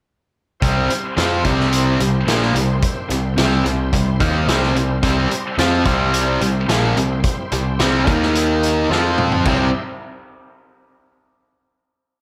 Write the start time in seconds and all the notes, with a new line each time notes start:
0.60 C2 C3 G3 C4 E4 G4 C5, kick, closed hi-hat
0.90 muted overdriven electric guitar stroke, muted picked electric bass stroke, muted distorted electric guitar stroke, closed hi-hat
1.16 F2 F3 C4 F4, snare, closed hi-hat
1.44 C2 C3 G3 C4, kick, closed hi-hat
1.60 snare
1.72 closed hi-hat
1.99 C2 C3 G3, closed hi-hat
2.27 A#1 A#2 F3 A#3, snare, closed hi-hat
2.42 snare
2.54 C2 C3 G3, closed hi-hat
2.83 kick, closed hi-hat
3.09 C2 C3 G3, closed hi-hat
3.36 C2 C3 G3 C4, snare, closed hi-hat
3.64 C2 C3 G3, closed hi-hat
3.93 C2 C3 G3, kick, closed hi-hat
4.20 D#2 D#3 A#3 D#4, kick, closed hi-hat
4.47 C2 C3 G3 C4, snare, closed hi-hat
4.63 snare
4.74 C2 C3 G3, closed hi-hat
5.01 C2 C3 G3 C4 E4 G4 C5, kick, closed hi-hat
5.31 muted overdriven electric guitar stroke, muted distorted electric guitar stroke, closed hi-hat
5.58 F2 F3 C4 F4, snare, closed hi-hat
5.86 C2 C3 G3 C4, kick, closed hi-hat
6.14 closed hi-hat
6.41 C2 C3 G3, closed hi-hat
6.68 A#1 A#2 F3 A#3, snare, closed hi-hat
6.97 C2 C3 G3, closed hi-hat
7.24 kick, closed hi-hat
7.52 C2 C3 G3, closed hi-hat
7.79 C2 C3 G3 C4, snare, closed hi-hat
8.07 D#2 D#3 A#3 D#4 A#4 D#5, kick, closed hi-hat
8.22 snare
8.35 closed hi-hat
8.63 closed hi-hat
8.89 F2 F3 C4 F4 C5 F5, snare
9.18 mid tom
9.32 floor tom
9.45 C2 C3 G3 C4 E4 G4 C5 E5, kick, crash